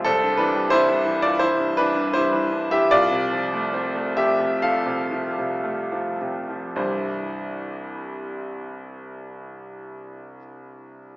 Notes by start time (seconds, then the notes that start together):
0.04 C2 C4 A4
0.23 G2
0.37 E3 D4 B4
0.55 G3
0.70 C4 E4 C5
0.89 G3
1.05 E3
1.22 G2 F4 D5
1.39 E3 E4 C5
1.60 G2
1.77 E3 D4 B4
1.95 G2
2.13 G3 E4 C5
2.33 E3
2.52 G2
2.71 E3 G4 E5
2.91 C2 F4 D5
3.11 C3
3.32 F3
3.53 A3
3.74 C4
3.95 A3
4.17 F3 G4 E5
4.39 C3
4.62 F3 A4 F5
4.86 C3
5.11 F3
5.39 C3
5.64 A3
5.92 F3
6.21 C3
6.50 F3
6.76 C2 G2 E3 G3 C4 E4 C5